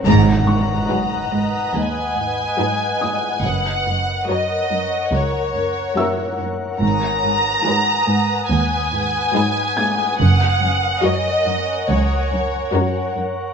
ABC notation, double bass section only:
X:1
M:4/4
L:1/8
Q:1/4=71
K:G#m
V:1 name="Double bass section" clef=bass
G,,,2 z2 D,,2 z2 | F,,,2 z2 C,,2 z2 | G,,,2 z2 D,,2 z2 | F,,,2 z2 C,,2 z2 |]